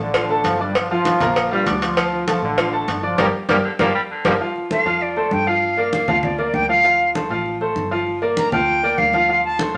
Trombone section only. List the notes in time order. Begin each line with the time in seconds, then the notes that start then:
0.00 D3 D4
0.45 F3 F4
0.61 G2 G3
0.76 F3 F4
0.90 F3 F4
1.52 G2 G3
1.76 G3
1.82 F3 F4
2.28 F3 F4
2.43 D3 D4
2.88 D3 D4
3.04 F3 F4
3.18 F3 G3 A#3
3.49 F3 G3 A#3
3.80 F3 G3 A#3
4.26 F3 G3 A#3